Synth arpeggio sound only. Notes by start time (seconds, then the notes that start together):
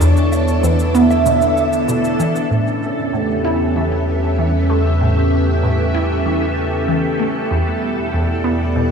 0.01 E2
0.63 E2
0.95 B3
1.26 B2
1.88 B2
2.20 E3
2.51 A2
3.13 A2
3.45 E4
3.76 E3
4.38 E3
4.70 A3
5.01 A2
5.63 A2
5.95 E4
6.26 E3
6.88 E3
7.19 A3
7.51 E2
8.13 E2
8.44 B3
8.76 B2